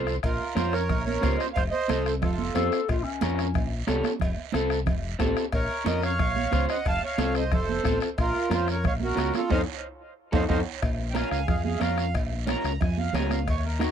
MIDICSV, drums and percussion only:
0, 0, Header, 1, 3, 480
1, 0, Start_track
1, 0, Key_signature, -5, "minor"
1, 0, Tempo, 330761
1, 348, Time_signature, 4, 2, 24, 8
1, 15708, Key_signature, -5, "minor"
1, 20189, End_track
2, 0, Start_track
2, 0, Title_t, "Two-headed folk drums"
2, 100, Note_on_c, 9, 37, 78
2, 245, Note_off_c, 9, 37, 0
2, 334, Note_on_c, 9, 37, 81
2, 343, Note_on_c, 9, 36, 75
2, 479, Note_off_c, 9, 37, 0
2, 488, Note_off_c, 9, 36, 0
2, 821, Note_on_c, 9, 37, 81
2, 966, Note_off_c, 9, 37, 0
2, 1061, Note_on_c, 9, 37, 84
2, 1206, Note_off_c, 9, 37, 0
2, 1298, Note_on_c, 9, 37, 79
2, 1304, Note_on_c, 9, 36, 86
2, 1443, Note_off_c, 9, 37, 0
2, 1449, Note_off_c, 9, 36, 0
2, 1784, Note_on_c, 9, 37, 83
2, 1788, Note_on_c, 9, 36, 72
2, 1929, Note_off_c, 9, 37, 0
2, 1933, Note_off_c, 9, 36, 0
2, 2041, Note_on_c, 9, 37, 81
2, 2186, Note_off_c, 9, 37, 0
2, 2271, Note_on_c, 9, 36, 83
2, 2283, Note_on_c, 9, 37, 81
2, 2416, Note_off_c, 9, 36, 0
2, 2428, Note_off_c, 9, 37, 0
2, 2754, Note_on_c, 9, 37, 82
2, 2899, Note_off_c, 9, 37, 0
2, 2992, Note_on_c, 9, 37, 85
2, 3137, Note_off_c, 9, 37, 0
2, 3232, Note_on_c, 9, 36, 88
2, 3233, Note_on_c, 9, 37, 90
2, 3377, Note_off_c, 9, 36, 0
2, 3378, Note_off_c, 9, 37, 0
2, 3711, Note_on_c, 9, 37, 81
2, 3856, Note_off_c, 9, 37, 0
2, 3958, Note_on_c, 9, 37, 80
2, 4103, Note_off_c, 9, 37, 0
2, 4198, Note_on_c, 9, 36, 75
2, 4198, Note_on_c, 9, 37, 81
2, 4343, Note_off_c, 9, 36, 0
2, 4343, Note_off_c, 9, 37, 0
2, 4675, Note_on_c, 9, 37, 85
2, 4820, Note_off_c, 9, 37, 0
2, 4917, Note_on_c, 9, 37, 84
2, 5062, Note_off_c, 9, 37, 0
2, 5154, Note_on_c, 9, 36, 84
2, 5155, Note_on_c, 9, 37, 81
2, 5299, Note_off_c, 9, 36, 0
2, 5300, Note_off_c, 9, 37, 0
2, 5626, Note_on_c, 9, 37, 84
2, 5771, Note_off_c, 9, 37, 0
2, 5875, Note_on_c, 9, 37, 86
2, 6020, Note_off_c, 9, 37, 0
2, 6113, Note_on_c, 9, 36, 78
2, 6114, Note_on_c, 9, 37, 81
2, 6259, Note_off_c, 9, 36, 0
2, 6259, Note_off_c, 9, 37, 0
2, 6589, Note_on_c, 9, 37, 83
2, 6734, Note_off_c, 9, 37, 0
2, 6823, Note_on_c, 9, 37, 89
2, 6968, Note_off_c, 9, 37, 0
2, 7065, Note_on_c, 9, 37, 82
2, 7068, Note_on_c, 9, 36, 84
2, 7211, Note_off_c, 9, 37, 0
2, 7213, Note_off_c, 9, 36, 0
2, 7542, Note_on_c, 9, 37, 77
2, 7548, Note_on_c, 9, 36, 73
2, 7687, Note_off_c, 9, 37, 0
2, 7693, Note_off_c, 9, 36, 0
2, 7788, Note_on_c, 9, 37, 85
2, 7934, Note_off_c, 9, 37, 0
2, 8018, Note_on_c, 9, 37, 79
2, 8025, Note_on_c, 9, 36, 81
2, 8163, Note_off_c, 9, 37, 0
2, 8170, Note_off_c, 9, 36, 0
2, 8507, Note_on_c, 9, 37, 82
2, 8652, Note_off_c, 9, 37, 0
2, 8757, Note_on_c, 9, 37, 85
2, 8902, Note_off_c, 9, 37, 0
2, 8989, Note_on_c, 9, 37, 84
2, 8990, Note_on_c, 9, 36, 88
2, 9134, Note_off_c, 9, 37, 0
2, 9135, Note_off_c, 9, 36, 0
2, 9472, Note_on_c, 9, 37, 82
2, 9473, Note_on_c, 9, 36, 76
2, 9617, Note_off_c, 9, 37, 0
2, 9618, Note_off_c, 9, 36, 0
2, 9719, Note_on_c, 9, 37, 79
2, 9864, Note_off_c, 9, 37, 0
2, 9953, Note_on_c, 9, 36, 82
2, 9958, Note_on_c, 9, 37, 75
2, 10099, Note_off_c, 9, 36, 0
2, 10103, Note_off_c, 9, 37, 0
2, 10431, Note_on_c, 9, 37, 81
2, 10576, Note_off_c, 9, 37, 0
2, 10667, Note_on_c, 9, 37, 82
2, 10812, Note_off_c, 9, 37, 0
2, 10908, Note_on_c, 9, 37, 87
2, 10914, Note_on_c, 9, 36, 87
2, 11053, Note_off_c, 9, 37, 0
2, 11059, Note_off_c, 9, 36, 0
2, 11394, Note_on_c, 9, 37, 85
2, 11395, Note_on_c, 9, 36, 70
2, 11539, Note_off_c, 9, 37, 0
2, 11540, Note_off_c, 9, 36, 0
2, 11643, Note_on_c, 9, 37, 88
2, 11788, Note_off_c, 9, 37, 0
2, 11876, Note_on_c, 9, 37, 80
2, 11877, Note_on_c, 9, 36, 82
2, 12021, Note_off_c, 9, 37, 0
2, 12022, Note_off_c, 9, 36, 0
2, 12355, Note_on_c, 9, 37, 81
2, 12500, Note_off_c, 9, 37, 0
2, 12594, Note_on_c, 9, 37, 87
2, 12739, Note_off_c, 9, 37, 0
2, 12839, Note_on_c, 9, 36, 85
2, 12841, Note_on_c, 9, 37, 89
2, 12984, Note_off_c, 9, 36, 0
2, 12986, Note_off_c, 9, 37, 0
2, 13330, Note_on_c, 9, 37, 78
2, 13475, Note_off_c, 9, 37, 0
2, 13572, Note_on_c, 9, 37, 81
2, 13717, Note_off_c, 9, 37, 0
2, 13803, Note_on_c, 9, 36, 97
2, 13948, Note_off_c, 9, 36, 0
2, 14995, Note_on_c, 9, 36, 96
2, 15140, Note_off_c, 9, 36, 0
2, 15235, Note_on_c, 9, 36, 93
2, 15380, Note_off_c, 9, 36, 0
2, 15711, Note_on_c, 9, 37, 83
2, 15712, Note_on_c, 9, 36, 78
2, 15856, Note_off_c, 9, 37, 0
2, 15857, Note_off_c, 9, 36, 0
2, 16199, Note_on_c, 9, 37, 80
2, 16344, Note_off_c, 9, 37, 0
2, 16419, Note_on_c, 9, 37, 83
2, 16564, Note_off_c, 9, 37, 0
2, 16663, Note_on_c, 9, 37, 84
2, 16665, Note_on_c, 9, 36, 84
2, 16809, Note_off_c, 9, 37, 0
2, 16811, Note_off_c, 9, 36, 0
2, 17145, Note_on_c, 9, 37, 78
2, 17290, Note_off_c, 9, 37, 0
2, 17381, Note_on_c, 9, 37, 82
2, 17526, Note_off_c, 9, 37, 0
2, 17630, Note_on_c, 9, 36, 76
2, 17632, Note_on_c, 9, 37, 80
2, 17775, Note_off_c, 9, 36, 0
2, 17777, Note_off_c, 9, 37, 0
2, 18123, Note_on_c, 9, 37, 84
2, 18268, Note_off_c, 9, 37, 0
2, 18362, Note_on_c, 9, 37, 83
2, 18507, Note_off_c, 9, 37, 0
2, 18600, Note_on_c, 9, 36, 81
2, 18606, Note_on_c, 9, 37, 84
2, 18746, Note_off_c, 9, 36, 0
2, 18751, Note_off_c, 9, 37, 0
2, 19088, Note_on_c, 9, 37, 82
2, 19234, Note_off_c, 9, 37, 0
2, 19313, Note_on_c, 9, 37, 81
2, 19459, Note_off_c, 9, 37, 0
2, 19556, Note_on_c, 9, 37, 77
2, 19558, Note_on_c, 9, 36, 77
2, 19701, Note_off_c, 9, 37, 0
2, 19703, Note_off_c, 9, 36, 0
2, 20044, Note_on_c, 9, 37, 83
2, 20189, Note_off_c, 9, 37, 0
2, 20189, End_track
3, 0, Start_track
3, 0, Title_t, "Drums"
3, 112, Note_on_c, 9, 73, 62
3, 258, Note_off_c, 9, 73, 0
3, 343, Note_on_c, 9, 56, 105
3, 353, Note_on_c, 9, 74, 67
3, 488, Note_off_c, 9, 56, 0
3, 498, Note_off_c, 9, 74, 0
3, 587, Note_on_c, 9, 63, 33
3, 733, Note_off_c, 9, 63, 0
3, 822, Note_on_c, 9, 56, 69
3, 823, Note_on_c, 9, 63, 94
3, 831, Note_on_c, 9, 73, 71
3, 967, Note_off_c, 9, 56, 0
3, 968, Note_off_c, 9, 63, 0
3, 976, Note_off_c, 9, 73, 0
3, 1079, Note_on_c, 9, 73, 72
3, 1224, Note_off_c, 9, 73, 0
3, 1298, Note_on_c, 9, 56, 90
3, 1305, Note_on_c, 9, 63, 34
3, 1305, Note_on_c, 9, 64, 83
3, 1318, Note_on_c, 9, 74, 74
3, 1443, Note_off_c, 9, 56, 0
3, 1450, Note_off_c, 9, 63, 0
3, 1450, Note_off_c, 9, 64, 0
3, 1463, Note_off_c, 9, 74, 0
3, 1556, Note_on_c, 9, 63, 69
3, 1701, Note_off_c, 9, 63, 0
3, 1786, Note_on_c, 9, 56, 71
3, 1786, Note_on_c, 9, 63, 86
3, 1786, Note_on_c, 9, 66, 73
3, 1791, Note_on_c, 9, 73, 69
3, 1931, Note_off_c, 9, 56, 0
3, 1931, Note_off_c, 9, 63, 0
3, 1931, Note_off_c, 9, 66, 0
3, 1936, Note_off_c, 9, 73, 0
3, 2035, Note_on_c, 9, 73, 71
3, 2180, Note_off_c, 9, 73, 0
3, 2261, Note_on_c, 9, 56, 102
3, 2274, Note_on_c, 9, 74, 72
3, 2406, Note_off_c, 9, 56, 0
3, 2419, Note_off_c, 9, 74, 0
3, 2500, Note_on_c, 9, 63, 34
3, 2645, Note_off_c, 9, 63, 0
3, 2746, Note_on_c, 9, 63, 101
3, 2748, Note_on_c, 9, 56, 67
3, 2753, Note_on_c, 9, 73, 75
3, 2891, Note_off_c, 9, 63, 0
3, 2893, Note_off_c, 9, 56, 0
3, 2898, Note_off_c, 9, 73, 0
3, 2993, Note_on_c, 9, 73, 73
3, 3139, Note_off_c, 9, 73, 0
3, 3221, Note_on_c, 9, 63, 33
3, 3221, Note_on_c, 9, 64, 85
3, 3222, Note_on_c, 9, 56, 82
3, 3226, Note_on_c, 9, 74, 72
3, 3366, Note_off_c, 9, 63, 0
3, 3366, Note_off_c, 9, 64, 0
3, 3367, Note_off_c, 9, 56, 0
3, 3371, Note_off_c, 9, 74, 0
3, 3462, Note_on_c, 9, 63, 72
3, 3608, Note_off_c, 9, 63, 0
3, 3696, Note_on_c, 9, 63, 83
3, 3703, Note_on_c, 9, 73, 73
3, 3706, Note_on_c, 9, 56, 71
3, 3706, Note_on_c, 9, 66, 72
3, 3841, Note_off_c, 9, 63, 0
3, 3848, Note_off_c, 9, 73, 0
3, 3851, Note_off_c, 9, 56, 0
3, 3851, Note_off_c, 9, 66, 0
3, 3949, Note_on_c, 9, 73, 71
3, 4094, Note_off_c, 9, 73, 0
3, 4187, Note_on_c, 9, 74, 66
3, 4194, Note_on_c, 9, 56, 100
3, 4332, Note_off_c, 9, 74, 0
3, 4339, Note_off_c, 9, 56, 0
3, 4422, Note_on_c, 9, 63, 33
3, 4567, Note_off_c, 9, 63, 0
3, 4661, Note_on_c, 9, 63, 95
3, 4668, Note_on_c, 9, 56, 69
3, 4671, Note_on_c, 9, 73, 75
3, 4806, Note_off_c, 9, 63, 0
3, 4813, Note_off_c, 9, 56, 0
3, 4816, Note_off_c, 9, 73, 0
3, 4920, Note_on_c, 9, 73, 74
3, 5065, Note_off_c, 9, 73, 0
3, 5141, Note_on_c, 9, 63, 35
3, 5141, Note_on_c, 9, 64, 81
3, 5154, Note_on_c, 9, 74, 74
3, 5157, Note_on_c, 9, 56, 83
3, 5286, Note_off_c, 9, 63, 0
3, 5286, Note_off_c, 9, 64, 0
3, 5299, Note_off_c, 9, 74, 0
3, 5302, Note_off_c, 9, 56, 0
3, 5620, Note_on_c, 9, 63, 82
3, 5626, Note_on_c, 9, 73, 73
3, 5630, Note_on_c, 9, 56, 68
3, 5630, Note_on_c, 9, 66, 73
3, 5765, Note_off_c, 9, 63, 0
3, 5771, Note_off_c, 9, 73, 0
3, 5775, Note_off_c, 9, 56, 0
3, 5775, Note_off_c, 9, 66, 0
3, 5858, Note_on_c, 9, 63, 72
3, 5868, Note_on_c, 9, 73, 69
3, 6003, Note_off_c, 9, 63, 0
3, 6013, Note_off_c, 9, 73, 0
3, 6089, Note_on_c, 9, 64, 73
3, 6122, Note_on_c, 9, 74, 66
3, 6123, Note_on_c, 9, 56, 108
3, 6234, Note_off_c, 9, 64, 0
3, 6267, Note_off_c, 9, 74, 0
3, 6268, Note_off_c, 9, 56, 0
3, 6340, Note_on_c, 9, 63, 34
3, 6485, Note_off_c, 9, 63, 0
3, 6564, Note_on_c, 9, 63, 96
3, 6594, Note_on_c, 9, 56, 65
3, 6600, Note_on_c, 9, 73, 74
3, 6709, Note_off_c, 9, 63, 0
3, 6740, Note_off_c, 9, 56, 0
3, 6745, Note_off_c, 9, 73, 0
3, 6841, Note_on_c, 9, 73, 74
3, 6986, Note_off_c, 9, 73, 0
3, 7055, Note_on_c, 9, 63, 34
3, 7055, Note_on_c, 9, 64, 80
3, 7066, Note_on_c, 9, 56, 85
3, 7069, Note_on_c, 9, 74, 72
3, 7200, Note_off_c, 9, 63, 0
3, 7200, Note_off_c, 9, 64, 0
3, 7211, Note_off_c, 9, 56, 0
3, 7214, Note_off_c, 9, 74, 0
3, 7540, Note_on_c, 9, 63, 80
3, 7541, Note_on_c, 9, 56, 65
3, 7541, Note_on_c, 9, 66, 73
3, 7542, Note_on_c, 9, 73, 67
3, 7685, Note_off_c, 9, 63, 0
3, 7686, Note_off_c, 9, 56, 0
3, 7686, Note_off_c, 9, 66, 0
3, 7687, Note_off_c, 9, 73, 0
3, 7789, Note_on_c, 9, 73, 69
3, 7934, Note_off_c, 9, 73, 0
3, 8017, Note_on_c, 9, 56, 99
3, 8034, Note_on_c, 9, 74, 71
3, 8162, Note_off_c, 9, 56, 0
3, 8180, Note_off_c, 9, 74, 0
3, 8260, Note_on_c, 9, 63, 34
3, 8405, Note_off_c, 9, 63, 0
3, 8504, Note_on_c, 9, 56, 71
3, 8504, Note_on_c, 9, 63, 97
3, 8506, Note_on_c, 9, 73, 78
3, 8649, Note_off_c, 9, 56, 0
3, 8649, Note_off_c, 9, 63, 0
3, 8651, Note_off_c, 9, 73, 0
3, 8745, Note_on_c, 9, 73, 73
3, 8890, Note_off_c, 9, 73, 0
3, 8990, Note_on_c, 9, 56, 82
3, 8990, Note_on_c, 9, 63, 34
3, 8990, Note_on_c, 9, 64, 86
3, 8996, Note_on_c, 9, 74, 77
3, 9135, Note_off_c, 9, 56, 0
3, 9135, Note_off_c, 9, 63, 0
3, 9135, Note_off_c, 9, 64, 0
3, 9141, Note_off_c, 9, 74, 0
3, 9230, Note_on_c, 9, 63, 68
3, 9375, Note_off_c, 9, 63, 0
3, 9466, Note_on_c, 9, 63, 85
3, 9470, Note_on_c, 9, 56, 67
3, 9471, Note_on_c, 9, 73, 66
3, 9611, Note_off_c, 9, 63, 0
3, 9615, Note_off_c, 9, 56, 0
3, 9616, Note_off_c, 9, 73, 0
3, 9705, Note_on_c, 9, 73, 71
3, 9850, Note_off_c, 9, 73, 0
3, 9945, Note_on_c, 9, 74, 72
3, 9951, Note_on_c, 9, 56, 98
3, 10090, Note_off_c, 9, 74, 0
3, 10096, Note_off_c, 9, 56, 0
3, 10195, Note_on_c, 9, 63, 34
3, 10341, Note_off_c, 9, 63, 0
3, 10423, Note_on_c, 9, 63, 95
3, 10431, Note_on_c, 9, 73, 74
3, 10434, Note_on_c, 9, 56, 74
3, 10568, Note_off_c, 9, 63, 0
3, 10576, Note_off_c, 9, 73, 0
3, 10579, Note_off_c, 9, 56, 0
3, 10664, Note_on_c, 9, 73, 73
3, 10809, Note_off_c, 9, 73, 0
3, 10906, Note_on_c, 9, 74, 79
3, 10914, Note_on_c, 9, 56, 83
3, 10922, Note_on_c, 9, 63, 35
3, 10922, Note_on_c, 9, 64, 84
3, 11051, Note_off_c, 9, 74, 0
3, 11060, Note_off_c, 9, 56, 0
3, 11067, Note_off_c, 9, 63, 0
3, 11067, Note_off_c, 9, 64, 0
3, 11163, Note_on_c, 9, 63, 67
3, 11308, Note_off_c, 9, 63, 0
3, 11387, Note_on_c, 9, 73, 70
3, 11398, Note_on_c, 9, 63, 80
3, 11414, Note_on_c, 9, 56, 66
3, 11532, Note_off_c, 9, 73, 0
3, 11543, Note_off_c, 9, 63, 0
3, 11559, Note_off_c, 9, 56, 0
3, 11617, Note_on_c, 9, 73, 69
3, 11762, Note_off_c, 9, 73, 0
3, 11870, Note_on_c, 9, 56, 102
3, 11873, Note_on_c, 9, 74, 69
3, 12015, Note_off_c, 9, 56, 0
3, 12018, Note_off_c, 9, 74, 0
3, 12117, Note_on_c, 9, 63, 33
3, 12262, Note_off_c, 9, 63, 0
3, 12351, Note_on_c, 9, 56, 71
3, 12356, Note_on_c, 9, 63, 94
3, 12361, Note_on_c, 9, 73, 76
3, 12496, Note_off_c, 9, 56, 0
3, 12501, Note_off_c, 9, 63, 0
3, 12506, Note_off_c, 9, 73, 0
3, 12598, Note_on_c, 9, 73, 73
3, 12743, Note_off_c, 9, 73, 0
3, 12828, Note_on_c, 9, 63, 36
3, 12828, Note_on_c, 9, 64, 83
3, 12836, Note_on_c, 9, 56, 90
3, 12836, Note_on_c, 9, 74, 75
3, 12973, Note_off_c, 9, 63, 0
3, 12973, Note_off_c, 9, 64, 0
3, 12981, Note_off_c, 9, 56, 0
3, 12981, Note_off_c, 9, 74, 0
3, 13064, Note_on_c, 9, 63, 66
3, 13209, Note_off_c, 9, 63, 0
3, 13308, Note_on_c, 9, 63, 85
3, 13310, Note_on_c, 9, 56, 68
3, 13326, Note_on_c, 9, 73, 70
3, 13453, Note_off_c, 9, 63, 0
3, 13455, Note_off_c, 9, 56, 0
3, 13471, Note_off_c, 9, 73, 0
3, 13549, Note_on_c, 9, 73, 73
3, 13560, Note_on_c, 9, 63, 73
3, 13694, Note_off_c, 9, 73, 0
3, 13705, Note_off_c, 9, 63, 0
3, 13790, Note_on_c, 9, 63, 98
3, 13792, Note_on_c, 9, 65, 93
3, 13793, Note_on_c, 9, 74, 102
3, 13935, Note_off_c, 9, 63, 0
3, 13938, Note_off_c, 9, 65, 0
3, 13938, Note_off_c, 9, 74, 0
3, 14987, Note_on_c, 9, 65, 105
3, 14992, Note_on_c, 9, 63, 97
3, 14999, Note_on_c, 9, 74, 98
3, 15132, Note_off_c, 9, 65, 0
3, 15137, Note_off_c, 9, 63, 0
3, 15144, Note_off_c, 9, 74, 0
3, 15221, Note_on_c, 9, 65, 94
3, 15233, Note_on_c, 9, 63, 101
3, 15233, Note_on_c, 9, 74, 98
3, 15366, Note_off_c, 9, 65, 0
3, 15378, Note_off_c, 9, 63, 0
3, 15378, Note_off_c, 9, 74, 0
3, 15707, Note_on_c, 9, 56, 103
3, 15709, Note_on_c, 9, 74, 71
3, 15852, Note_off_c, 9, 56, 0
3, 15854, Note_off_c, 9, 74, 0
3, 15951, Note_on_c, 9, 63, 34
3, 16097, Note_off_c, 9, 63, 0
3, 16177, Note_on_c, 9, 63, 98
3, 16187, Note_on_c, 9, 56, 69
3, 16193, Note_on_c, 9, 73, 75
3, 16322, Note_off_c, 9, 63, 0
3, 16332, Note_off_c, 9, 56, 0
3, 16338, Note_off_c, 9, 73, 0
3, 16435, Note_on_c, 9, 73, 70
3, 16580, Note_off_c, 9, 73, 0
3, 16661, Note_on_c, 9, 56, 89
3, 16661, Note_on_c, 9, 63, 32
3, 16661, Note_on_c, 9, 64, 80
3, 16681, Note_on_c, 9, 74, 71
3, 16806, Note_off_c, 9, 56, 0
3, 16806, Note_off_c, 9, 63, 0
3, 16806, Note_off_c, 9, 64, 0
3, 16826, Note_off_c, 9, 74, 0
3, 16903, Note_on_c, 9, 63, 68
3, 17048, Note_off_c, 9, 63, 0
3, 17136, Note_on_c, 9, 56, 67
3, 17137, Note_on_c, 9, 63, 79
3, 17149, Note_on_c, 9, 73, 74
3, 17281, Note_off_c, 9, 56, 0
3, 17282, Note_off_c, 9, 63, 0
3, 17294, Note_off_c, 9, 73, 0
3, 17388, Note_on_c, 9, 73, 69
3, 17533, Note_off_c, 9, 73, 0
3, 17623, Note_on_c, 9, 74, 69
3, 17626, Note_on_c, 9, 56, 106
3, 17768, Note_off_c, 9, 74, 0
3, 17771, Note_off_c, 9, 56, 0
3, 17871, Note_on_c, 9, 63, 35
3, 18016, Note_off_c, 9, 63, 0
3, 18101, Note_on_c, 9, 63, 101
3, 18102, Note_on_c, 9, 73, 71
3, 18114, Note_on_c, 9, 56, 65
3, 18246, Note_off_c, 9, 63, 0
3, 18247, Note_off_c, 9, 73, 0
3, 18259, Note_off_c, 9, 56, 0
3, 18348, Note_on_c, 9, 73, 70
3, 18493, Note_off_c, 9, 73, 0
3, 18584, Note_on_c, 9, 56, 81
3, 18588, Note_on_c, 9, 74, 73
3, 18592, Note_on_c, 9, 63, 32
3, 18592, Note_on_c, 9, 64, 85
3, 18730, Note_off_c, 9, 56, 0
3, 18733, Note_off_c, 9, 74, 0
3, 18737, Note_off_c, 9, 63, 0
3, 18737, Note_off_c, 9, 64, 0
3, 18831, Note_on_c, 9, 63, 66
3, 18977, Note_off_c, 9, 63, 0
3, 19054, Note_on_c, 9, 63, 79
3, 19054, Note_on_c, 9, 64, 73
3, 19075, Note_on_c, 9, 56, 69
3, 19075, Note_on_c, 9, 66, 77
3, 19077, Note_on_c, 9, 73, 71
3, 19200, Note_off_c, 9, 63, 0
3, 19200, Note_off_c, 9, 64, 0
3, 19221, Note_off_c, 9, 56, 0
3, 19221, Note_off_c, 9, 66, 0
3, 19222, Note_off_c, 9, 73, 0
3, 19305, Note_on_c, 9, 63, 72
3, 19317, Note_on_c, 9, 73, 74
3, 19450, Note_off_c, 9, 63, 0
3, 19463, Note_off_c, 9, 73, 0
3, 19555, Note_on_c, 9, 74, 72
3, 19558, Note_on_c, 9, 56, 107
3, 19700, Note_off_c, 9, 74, 0
3, 19703, Note_off_c, 9, 56, 0
3, 19792, Note_on_c, 9, 63, 33
3, 19937, Note_off_c, 9, 63, 0
3, 20028, Note_on_c, 9, 63, 97
3, 20044, Note_on_c, 9, 73, 75
3, 20050, Note_on_c, 9, 56, 72
3, 20173, Note_off_c, 9, 63, 0
3, 20189, Note_off_c, 9, 56, 0
3, 20189, Note_off_c, 9, 73, 0
3, 20189, End_track
0, 0, End_of_file